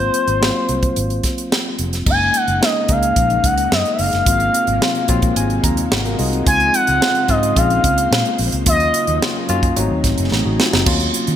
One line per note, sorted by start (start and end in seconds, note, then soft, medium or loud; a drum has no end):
0.00 0.23 F#3 medium
0.00 0.23 A#3 medium
0.00 0.23 C4 medium
0.00 0.23 F4 medium
0.00 1.53 C5 loud
0.00 closed hi-hat soft
0.14 closed hi-hat medium
0.28 0.50 G#1 medium
0.28 closed hi-hat soft
0.40 1.15 F#3 medium
0.40 1.15 A#3 medium
0.40 1.15 C4 medium
0.40 1.16 F4 medium
0.40 snare loud
0.69 0.91 C2 medium
0.69 closed hi-hat medium
0.83 kick medium
0.83 closed hi-hat soft
0.96 1.19 G#1 medium
0.96 closed hi-hat medium
1.10 closed hi-hat soft
1.23 kick medium
1.23 snare soft
1.23 closed hi-hat medium
1.38 closed hi-hat soft
1.52 snare loud
1.79 2.01 F1 medium
1.79 closed hi-hat medium
1.93 snare soft
1.93 closed hi-hat soft
2.06 2.29 F#1 medium
2.06 4.24 C#3 medium
2.06 6.42 F#3 medium
2.06 2.43 G#3 medium
2.06 8.63 G#3 medium
2.06 6.43 A#3 medium
2.06 2.44 A#3 medium
2.06 2.44 C#4 medium
2.06 4.24 D#4 medium
2.06 2.44 D#4 medium
2.06 2.38 G#5 loud
2.06 kick loud
2.06 crash medium
2.34 2.65 F#5 loud
2.34 closed hi-hat medium
2.48 2.59 F#1 medium
2.48 closed hi-hat soft
2.61 2.80 G#3 medium
2.61 2.80 A#3 medium
2.61 2.80 C#4 medium
2.61 2.80 D#4 medium
2.61 2.93 D#5 medium
2.61 snare loud
2.88 3.11 C#2 medium
2.88 3.63 G#3 medium
2.88 3.63 A#3 medium
2.88 3.63 C#4 medium
2.88 3.63 D#4 medium
2.88 3.47 F5 loud
2.88 kick medium
2.88 closed hi-hat medium
3.03 closed hi-hat soft
3.16 3.39 A#1 loud
3.16 kick medium
3.16 closed hi-hat medium
3.30 closed hi-hat soft
3.44 3.66 C#2 medium
3.44 3.74 F#5 medium
3.44 kick medium
3.44 closed hi-hat medium
3.58 closed hi-hat medium
3.72 3.83 F#2 medium
3.72 3.95 D#5 medium
3.72 snare loud
3.85 closed hi-hat soft
3.93 4.02 E5 medium
3.99 4.10 F#1 medium
3.99 4.27 F5 medium
3.99 open hi-hat medium
4.13 4.24 F#1 medium
4.13 snare soft
4.13 closed hi-hat medium
4.26 4.49 G#1 loud
4.26 6.44 C3 medium
4.26 4.63 F#3 medium
4.26 4.63 A#3 medium
4.26 4.64 C4 medium
4.26 8.63 D#4 medium
4.26 4.64 F4 medium
4.26 5.05 F5 medium
4.26 kick loud
4.26 closed hi-hat loud
4.40 closed hi-hat soft
4.54 closed hi-hat medium
4.67 4.79 G#1 medium
4.67 closed hi-hat soft
4.81 5.00 F#3 medium
4.81 5.00 A#3 medium
4.81 5.00 C4 medium
4.81 5.00 F4 medium
4.81 snare loud
4.95 closed hi-hat soft
5.08 5.31 A#1 medium
5.08 5.83 F#3 medium
5.08 5.83 A#3 medium
5.08 5.64 C4 medium
5.08 5.64 F4 medium
5.08 5.34 C6 medium
5.08 kick medium
5.08 closed hi-hat medium
5.22 kick medium
5.22 closed hi-hat soft
5.36 5.58 G#1 medium
5.36 5.62 G#5 medium
5.36 closed hi-hat medium
5.50 closed hi-hat soft
5.64 5.86 D#2 medium
5.64 5.89 A#5 medium
5.64 kick medium
5.64 closed hi-hat medium
5.77 closed hi-hat medium
5.91 6.14 G#1 medium
5.91 6.04 F#5 medium
5.91 snare loud
6.05 6.19 F#4 medium
6.05 6.18 A#4 medium
6.05 6.18 F5 medium
6.05 closed hi-hat soft
6.19 6.41 C2 loud
6.19 6.32 F4 medium
6.19 6.32 G#4 medium
6.19 6.44 D#5 medium
6.19 open hi-hat medium
6.33 6.45 C4 medium
6.33 6.45 D#4 medium
6.33 closed hi-hat medium
6.46 6.69 C#2 loud
6.46 8.65 C#3 medium
6.46 7.56 F3 medium
6.46 6.83 G#3 medium
6.46 6.83 C4 medium
6.46 7.56 C4 medium
6.46 6.84 D#4 medium
6.46 6.84 F4 medium
6.46 6.76 G#5 loud
6.46 kick loud
6.46 closed hi-hat loud
6.60 closed hi-hat soft
6.74 7.31 F#5 loud
6.74 closed hi-hat medium
6.87 6.99 C#2 medium
6.87 closed hi-hat soft
7.01 7.20 G#3 medium
7.01 7.20 C4 medium
7.01 7.20 D#4 medium
7.01 7.20 F4 medium
7.01 snare loud
7.15 closed hi-hat soft
7.28 7.51 G#2 loud
7.28 7.55 G#3 medium
7.28 7.55 C4 medium
7.28 7.57 D#4 medium
7.28 7.56 F4 medium
7.28 7.58 D#5 medium
7.28 kick medium
7.28 closed hi-hat medium
7.43 closed hi-hat medium
7.56 7.79 A#1 loud
7.56 8.44 G#3 medium
7.56 8.66 A#3 medium
7.56 8.44 C4 medium
7.56 8.45 C#4 medium
7.56 8.45 F4 medium
7.56 8.66 C5 medium
7.56 8.39 F5 medium
7.56 kick medium
7.56 closed hi-hat medium
7.70 closed hi-hat soft
7.84 8.06 C#2 medium
7.84 kick medium
7.84 closed hi-hat medium
7.98 closed hi-hat medium
8.11 8.23 A#2 medium
8.11 snare loud
8.25 closed hi-hat soft
8.38 8.50 A#1 loud
8.38 open hi-hat medium
8.52 8.64 C#2 medium
8.52 closed hi-hat medium
8.66 8.89 D#2 loud
8.66 9.76 C#3 medium
8.66 9.03 F#3 medium
8.66 9.76 F#3 medium
8.66 9.04 A#3 medium
8.66 9.76 A#3 medium
8.66 9.04 C#4 medium
8.66 9.75 D#4 medium
8.66 9.04 F4 medium
8.66 9.18 D#5 loud
8.66 kick loud
8.66 closed hi-hat loud
8.80 closed hi-hat soft
8.94 closed hi-hat medium
9.07 9.19 D#2 medium
9.07 closed hi-hat soft
9.21 9.40 F#3 medium
9.21 9.40 A#3 medium
9.21 9.40 C#4 medium
9.21 9.41 F4 medium
9.21 snare loud
9.48 9.71 F#2 medium
9.48 9.75 F#3 medium
9.48 9.76 A#3 medium
9.48 9.77 C#4 medium
9.48 9.77 F4 loud
9.48 closed hi-hat medium
9.63 kick medium
9.63 closed hi-hat soft
9.76 9.88 G#1 loud
9.76 10.85 C3 medium
9.76 10.64 F#3 medium
9.76 10.85 A3 medium
9.76 10.65 A3 medium
9.76 10.31 C4 medium
9.76 10.85 D#4 medium
9.76 10.31 D#4 loud
9.76 10.85 G#4 medium
9.76 closed hi-hat medium
9.91 10.02 D#2 medium
10.04 10.15 G#1 medium
10.04 kick medium
10.04 snare soft
10.04 closed hi-hat medium
10.18 10.29 F#1 medium
10.18 closed hi-hat medium
10.32 10.43 A1 medium
10.32 10.45 C4 medium
10.32 10.45 D#4 medium
10.32 snare medium
10.45 10.57 A1 medium
10.45 10.59 D#4 medium
10.45 10.58 F#4 medium
10.59 10.72 F4 medium
10.59 snare medium
10.73 10.84 F#1 medium
10.73 10.99 C4 medium
10.73 10.99 D#4 medium
10.73 snare medium
10.86 11.09 D#2 loud
10.86 11.36 C#3 medium
10.86 11.36 F#3 medium
10.86 11.23 F#3 medium
10.86 11.24 A#3 medium
10.86 11.36 A#3 medium
10.86 11.24 C#4 medium
10.86 11.36 D#4 medium
10.86 11.36 F4 medium
10.86 11.24 F4 medium
10.86 kick loud
10.86 crash loud
11.00 closed hi-hat soft
11.14 closed hi-hat medium
11.27 11.36 D#3 medium
11.27 closed hi-hat soft